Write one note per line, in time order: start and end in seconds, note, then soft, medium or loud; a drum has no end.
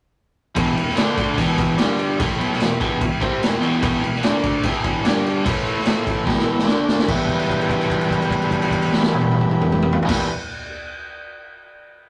0.54 0.75 E2 loud
0.54 0.75 B2 loud
0.54 0.76 E3 loud
0.54 0.96 E4 medium
0.54 0.97 G4 medium
0.54 0.97 B4 medium
0.54 kick loud
0.54 crash medium
0.76 0.93 E2 medium
0.76 0.93 B2 medium
0.76 crash medium
0.89 snare soft
0.96 1.37 D3 medium
0.96 1.37 A3 medium
0.96 1.38 D4 loud
0.96 1.39 D4 medium
0.96 1.38 A4 medium
0.96 1.38 D5 medium
0.96 snare loud
0.96 crash medium
1.17 kick medium
1.17 crash medium
1.37 1.78 E2 medium
1.37 1.77 B2 loud
1.37 1.78 E3 loud
1.37 1.80 E4 medium
1.37 1.76 G4 medium
1.37 1.79 B4 medium
1.37 kick medium
1.37 crash medium
1.58 kick medium
1.58 crash medium
1.76 2.19 G2 medium
1.76 2.19 D3 medium
1.76 2.19 G3 loud
1.76 2.19 D4 medium
1.76 2.17 G4 medium
1.76 2.19 D5 medium
1.76 snare loud
1.76 crash medium
1.99 crash medium
2.17 2.38 A2 medium
2.17 2.39 E3 loud
2.17 2.40 A3 loud
2.17 4.18 E4 medium
2.17 4.19 G4 medium
2.17 4.18 B4 medium
2.17 kick loud
2.17 crash medium
2.39 2.59 B2 medium
2.39 2.60 F#3 medium
2.39 2.60 B3 medium
2.39 crash medium
2.52 snare soft
2.60 2.77 E2 medium
2.60 2.77 B2 medium
2.60 snare loud
2.60 crash medium
2.80 3.00 E2 loud
2.80 3.00 B2 loud
2.80 3.01 E3 loud
2.80 kick medium
2.80 crash medium
3.01 3.18 E2 medium
3.01 3.18 B2 medium
3.01 kick medium
3.01 crash medium
3.20 3.40 C3 medium
3.20 3.41 G3 medium
3.20 3.42 C4 loud
3.20 kick medium
3.20 crash medium
3.40 3.58 E2 medium
3.40 3.57 B2 medium
3.40 snare loud
3.40 crash medium
3.60 3.81 E2 loud
3.60 3.81 B2 loud
3.60 3.81 E3 loud
3.60 crash medium
3.82 4.02 E2 medium
3.82 4.02 B2 loud
3.82 4.02 E3 loud
3.82 kick loud
3.82 crash medium
4.03 4.19 E2 medium
4.03 4.20 B2 medium
4.03 crash medium
4.15 snare soft
4.23 4.63 D3 medium
4.23 4.64 A3 loud
4.23 4.64 D4 medium
4.23 4.64 D4 loud
4.23 4.65 A4 medium
4.23 4.65 D5 medium
4.23 snare loud
4.23 crash medium
4.44 kick medium
4.44 crash medium
4.63 5.04 E2 loud
4.63 5.04 B2 loud
4.63 5.05 E3 loud
4.63 5.04 E4 medium
4.63 5.03 G4 medium
4.63 5.04 B4 medium
4.63 kick loud
4.63 crash medium
4.84 kick medium
4.84 crash medium
5.03 5.45 G2 medium
5.03 5.44 D3 medium
5.03 5.44 G3 loud
5.03 5.45 D4 medium
5.03 5.45 G4 medium
5.03 5.44 D5 medium
5.03 snare loud
5.03 crash medium
5.26 crash medium
5.44 6.25 A2 medium
5.44 6.25 E3 loud
5.44 6.26 A3 loud
5.44 6.24 E4 medium
5.44 6.24 A4 medium
5.44 6.24 E5 medium
5.44 kick loud
5.44 crash medium
5.66 crash medium
5.78 snare soft
5.85 snare loud
5.85 crash medium
6.07 kick medium
6.07 crash medium
6.25 6.65 E2 medium
6.25 6.65 B2 medium
6.25 6.66 E3 loud
6.25 6.67 G4 medium
6.25 6.67 B4 medium
6.25 kick medium
6.25 snare medium
6.29 6.68 E5 medium
6.38 snare medium
6.59 snare medium
6.66 7.06 D3 medium
6.66 7.07 A3 medium
6.66 7.07 D4 medium
6.66 7.07 D4 loud
6.66 7.07 A4 medium
6.66 7.08 D5 medium
6.66 snare medium
6.88 snare loud
6.99 snare medium
7.06 10.05 E2 medium
7.06 10.06 B2 medium
7.06 10.07 E3 loud
7.06 10.08 G3 loud
7.06 10.08 B3 loud
7.06 9.99 E4 medium
7.06 9.99 G4 medium
7.06 10.00 B4 medium
7.06 kick loud
7.06 crash loud
7.11 10.09 E4 loud
7.29 kick medium
7.29 crash soft
7.39 crash soft
7.50 kick medium
7.50 crash soft
7.61 crash soft
7.69 kick medium
7.69 crash soft
7.81 crash soft
7.90 kick medium
7.90 crash medium
8.01 crash soft
8.10 kick medium
8.10 crash medium
8.22 crash medium
8.30 kick medium
8.30 crash medium
8.42 crash soft
8.51 kick medium
8.51 crash soft
8.62 crash medium
8.71 kick medium
8.71 crash medium
8.82 crash medium
8.93 snare medium
9.02 snare loud
9.12 high tom medium
9.21 high tom loud
9.31 high tom loud
9.41 mid tom loud
9.51 mid tom loud
9.61 mid tom loud
9.72 mid tom loud
9.82 mid tom loud
9.92 floor tom loud
10.02 10.25 E2 loud
10.02 floor tom loud
10.07 10.26 B2 loud
10.07 10.27 E3 loud
10.07 10.27 G3 loud
10.07 10.27 B3 loud
10.07 10.26 E4 medium
10.07 10.28 E4 loud
10.07 10.26 G4 medium
10.07 10.26 B4 medium
10.07 kick loud
10.07 snare loud
10.07 crash loud